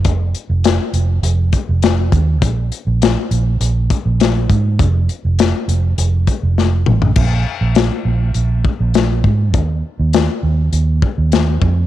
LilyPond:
<<
  \new Staff \with { instrumentName = "Fingered electric bass" } { \clef bass \time 4/4 \key aes \mixolydian \tempo 4 = 101 f,,8 r16 f,,8 r16 f,,8 f,,8 r16 f,,8. ees,8 | bes,,8 r16 bes,,8 r16 bes,,8 bes,,8 r16 bes,,8. aes,8 | f,,8 r16 f,,8 r16 f,,8 f,,8 r16 f,,8. a,,8 | bes,,8 r16 bes,,8 r16 bes,,8 bes,,8 r16 bes,,8. aes,8 |
ees,8 r16 ees,8 r16 ees,8 ees,8 r16 ees,8. f,8 | }
  \new DrumStaff \with { instrumentName = "Drums" } \drummode { \time 4/4 <hh bd>8 hh8 <hh sn>8 hh8 hh8 <hh bd>8 <hh sn>8 <hh bd>8 | <hh bd>8 hh8 <hh sn>8 hh8 hh8 <hh bd>8 <hh sn>8 <hh bd>8 | <hh bd>8 hh8 <hh sn>8 hh8 hh8 <hh bd>8 sn8 toml16 tomfh16 | <cymc bd>4 <hh sn>4 hh8 bd8 <hh sn>8 bd8 |
<hh bd>4 <hh sn>4 hh8 bd8 <hh sn>8 bd8 | }
>>